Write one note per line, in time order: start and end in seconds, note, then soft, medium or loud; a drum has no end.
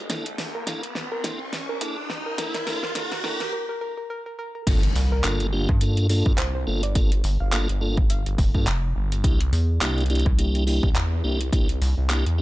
0.00 riser medium
0.10 0.37 C2 medium
0.10 0.25 A#3 medium
0.10 0.25 D4 medium
0.10 0.25 E4 medium
0.10 0.25 A4 medium
0.10 kick loud
0.10 snare medium
0.10 closed hi-hat medium
0.26 closed hi-hat medium
0.38 0.65 E2 loud
0.38 snare medium
0.38 open hi-hat medium
0.55 0.63 A#4 medium
0.67 1.09 C2 loud
0.67 0.82 A#3 medium
0.67 0.82 D4 medium
0.67 0.82 E4 medium
0.67 0.82 A4 medium
0.67 kick loud
0.67 snare medium
0.67 closed hi-hat medium
0.83 closed hi-hat soft
0.95 snare medium
1.12 1.66 C2 loud
1.12 1.20 A#4 medium
1.24 1.39 A#3 medium
1.24 1.39 D4 medium
1.24 1.39 E4 medium
1.24 1.39 A4 medium
1.24 kick loud
1.24 snare medium
1.24 closed hi-hat medium
1.53 snare medium
1.53 open hi-hat medium
1.69 1.79 C2 loud
1.69 1.77 A#4 medium
1.81 2.08 E2 loud
1.81 1.97 A#3 medium
1.81 1.97 D4 medium
1.81 1.97 E4 medium
1.81 1.97 A4 loud
1.81 kick loud
1.81 closed hi-hat medium
2.10 2.36 C2 loud
2.10 snare medium
2.26 2.34 A#4 medium
2.38 2.65 C2 loud
2.38 2.54 A#3 medium
2.38 2.54 D4 medium
2.38 2.54 E4 medium
2.38 2.54 A4 loud
2.38 2.49 A#4 medium
2.38 kick loud
2.38 snare loud
2.38 closed hi-hat medium
2.54 2.63 A#4 medium
2.54 snare medium
2.54 closed hi-hat medium
2.67 2.81 C2 loud
2.67 2.82 A#3 medium
2.67 2.82 D4 medium
2.67 2.82 E4 medium
2.67 2.82 A4 medium
2.67 2.77 A#4 medium
2.67 snare loud
2.67 open hi-hat medium
2.83 3.09 C2 loud
2.83 2.91 A#4 medium
2.83 snare medium
2.95 3.11 A#3 medium
2.95 3.11 D4 medium
2.95 3.11 E4 medium
2.95 3.11 A4 loud
2.95 3.06 A#4 medium
2.95 kick loud
2.95 snare medium
2.95 closed hi-hat medium
3.12 3.22 C2 loud
3.12 3.20 A#4 medium
3.12 snare medium
3.12 closed hi-hat soft
3.24 3.39 A#3 medium
3.24 3.39 D4 medium
3.24 3.39 E4 medium
3.24 3.39 A4 loud
3.24 3.35 A#4 medium
3.24 snare loud
3.40 3.48 A#4 medium
3.40 snare medium
3.40 closed hi-hat soft
3.53 3.63 A#4 medium
3.69 3.77 A#4 medium
3.81 3.92 A#4 medium
3.97 4.05 A#4 medium
4.10 4.20 A#4 medium
4.26 4.34 A#4 medium
4.39 4.49 A#4 loud
4.55 4.63 A#4 medium
4.67 4.94 G1 loud
4.67 4.82 A#3 medium
4.67 4.82 D4 medium
4.67 4.82 F4 medium
4.67 4.82 A4 medium
4.67 kick loud
4.67 closed hi-hat medium
4.67 crash loud
4.67 impact medium
4.83 closed hi-hat medium
4.96 5.22 C2 loud
4.96 open hi-hat medium
5.12 5.20 A#4 medium
5.24 5.66 G1 medium
5.24 5.47 A#3 medium
5.24 5.47 D4 medium
5.24 5.47 F4 medium
5.24 5.47 A4 medium
5.24 5.35 A#4 medium
5.24 clap loud
5.24 closed hi-hat medium
5.40 closed hi-hat soft
5.53 5.68 A#3 loud
5.53 5.68 D4 medium
5.53 5.68 F4 medium
5.53 5.68 G4 loud
5.69 6.23 G2 loud
5.69 kick loud
5.69 cross-stick soft
5.81 6.07 A#3 medium
5.81 6.07 D4 medium
5.81 6.07 F4 medium
5.81 6.07 A4 medium
5.81 closed hi-hat medium
5.97 closed hi-hat soft
6.09 6.32 A#3 loud
6.09 6.33 D4 medium
6.09 6.32 F4 medium
6.09 6.32 A4 loud
6.09 open hi-hat medium
6.26 6.36 G2 loud
6.26 kick loud
6.38 6.65 C2 medium
6.38 6.49 C5 medium
6.38 clap loud
6.38 closed hi-hat medium
6.55 6.63 C5 medium
6.67 6.94 G1 loud
6.67 6.82 A#3 medium
6.67 6.82 D4 medium
6.67 6.82 F4 medium
6.67 6.82 A4 loud
6.83 6.98 D5 medium
6.83 closed hi-hat medium
6.95 7.22 G1 medium
6.95 7.11 A#3 loud
6.95 7.11 D4 medium
6.95 7.11 F4 medium
6.95 7.11 A4 loud
6.95 kick loud
6.95 closed hi-hat medium
7.12 closed hi-hat medium
7.24 7.38 G1 medium
7.24 open hi-hat medium
7.40 7.67 G1 loud
7.40 7.48 F5 medium
7.53 7.68 A#3 medium
7.53 7.68 D4 medium
7.53 7.68 F4 medium
7.53 7.68 A4 medium
7.53 7.63 F5 medium
7.53 clap loud
7.53 closed hi-hat medium
7.69 8.24 G1 loud
7.69 closed hi-hat soft
7.81 7.97 A#3 medium
7.81 7.97 D4 medium
7.81 7.97 F4 medium
7.81 7.97 A4 medium
7.97 kick loud
8.10 8.55 F5 medium
8.10 closed hi-hat medium
8.26 8.36 G1 loud
8.26 closed hi-hat soft
8.38 8.52 F1 loud
8.38 kick loud
8.38 open hi-hat medium
8.55 8.65 G2 loud
8.55 8.66 A#3 medium
8.55 8.66 D4 medium
8.55 8.66 F4 medium
8.55 8.66 A4 loud
8.55 kick medium
8.67 8.93 F1 loud
8.67 clap loud
8.67 closed hi-hat medium
8.96 9.22 G1 loud
9.12 closed hi-hat medium
9.24 9.51 C2 loud
9.24 9.39 A#3 medium
9.24 9.40 D4 medium
9.24 9.39 E4 medium
9.24 9.39 G4 medium
9.24 kick loud
9.24 closed hi-hat medium
9.41 closed hi-hat medium
9.52 9.79 E2 loud
9.52 open hi-hat medium
9.81 10.24 C2 medium
9.81 10.04 A#3 medium
9.81 10.04 D4 medium
9.81 10.04 E4 medium
9.81 10.04 G4 medium
9.81 clap loud
9.81 closed hi-hat medium
9.98 closed hi-hat soft
10.01 closed hi-hat soft
10.06 10.25 A#3 medium
10.06 closed hi-hat soft
10.10 10.25 D4 medium
10.10 10.25 E4 medium
10.10 10.25 G4 loud
10.10 closed hi-hat soft
10.15 closed hi-hat soft
10.20 closed hi-hat soft
10.26 10.81 C2 loud
10.26 kick loud
10.26 cross-stick soft
10.38 10.64 A#3 medium
10.38 10.64 D4 medium
10.38 10.64 E4 medium
10.38 10.64 G4 medium
10.38 closed hi-hat medium
10.55 closed hi-hat soft
10.67 10.90 A#3 loud
10.67 10.90 D4 medium
10.67 10.90 E4 medium
10.67 10.90 G4 loud
10.67 open hi-hat medium
10.83 10.94 C2 loud
10.83 kick loud
10.96 11.22 E2 loud
10.96 clap loud
10.96 closed hi-hat medium
11.24 11.51 C2 loud
11.24 11.40 A#3 medium
11.24 11.40 D4 medium
11.24 11.40 E4 medium
11.24 11.40 G4 loud
11.41 closed hi-hat medium
11.53 11.79 C2 loud
11.53 11.68 A#3 loud
11.53 11.68 D4 medium
11.53 11.68 E4 medium
11.53 11.68 G4 loud
11.53 kick loud
11.53 closed hi-hat medium
11.69 closed hi-hat medium
11.82 11.95 C2 loud
11.82 open hi-hat medium
11.98 12.24 C2 loud
12.10 12.25 A#3 medium
12.10 12.25 D4 medium
12.10 12.25 E4 medium
12.10 12.25 G4 medium
12.10 clap loud
12.10 closed hi-hat medium
12.26 12.42 E2 medium
12.26 closed hi-hat soft
12.38 12.42 A#3 medium
12.38 12.42 D4 medium
12.38 12.42 E4 medium
12.38 12.42 G4 medium